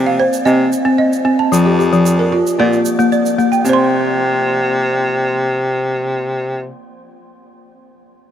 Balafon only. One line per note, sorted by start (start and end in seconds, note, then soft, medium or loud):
0.06 0.46 F5 medium
0.20 0.46 C5 medium
0.45 0.72 C4 medium
0.45 0.86 D#5 medium
0.85 1.12 C4 medium
0.98 1.39 D#5 medium
1.25 1.52 C4 medium
1.39 1.66 A5 medium
1.52 1.79 F3 medium
1.66 1.78 G4 medium
1.79 2.19 G4 medium
1.93 2.19 F3 medium
2.19 2.59 A#4 medium
2.32 2.59 F4 medium
2.60 2.86 A#3 medium
2.60 2.99 D5 medium
2.99 3.25 A#3 medium
3.12 3.52 D5 medium
3.39 3.65 A#3 medium
3.52 3.78 G5 medium
3.65 6.73 C4 medium
3.69 6.77 C5 medium
3.73 6.81 C6 medium